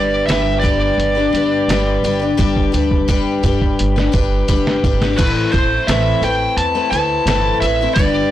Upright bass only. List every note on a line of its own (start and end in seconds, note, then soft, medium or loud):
0.00 0.24 G1 medium
0.28 0.89 G1 medium
0.98 1.29 G1 medium
1.33 1.64 G1 medium
1.68 1.99 G1 medium
2.03 2.34 G1 medium
2.39 2.69 G1 medium
2.74 3.04 D2 medium
3.09 3.39 G1 medium
3.44 3.74 G2 medium
3.80 4.10 G1 medium
4.14 4.44 G1 medium
4.48 4.79 G1 medium
4.84 5.14 G#1 medium
5.19 5.42 A1 medium
5.54 5.77 A1 medium
5.88 6.11 A1 medium
6.21 6.45 A1 medium
6.57 6.80 E2 medium
6.92 7.15 D2 medium
7.26 7.50 G1 medium
7.61 7.85 A1 medium
7.96 8.20 G1 medium